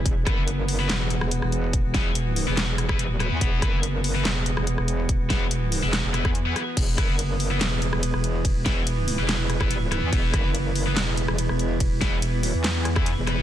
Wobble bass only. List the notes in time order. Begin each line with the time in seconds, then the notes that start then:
0.06 E1
0.27 F#1
0.89 E1
1.21 E1
1.42 E1
1.84 E1
2.47 E1
3.05 D#1
3.31 E2
3.41 E1
3.62 F#1
4.25 E1
4.57 E1
4.78 E1
5.20 E1
5.83 E1
6.04 E1
6.25 E2
6.77 E1
6.98 F#1
7.61 E1
7.93 E1
8.14 E1
8.56 E1
9.19 E1
10.03 E2
10.13 E1
10.34 F#1
10.96 E1
11.28 E1
11.49 E1
11.91 E1
12.34 D#1
12.54 E2
13.17 E1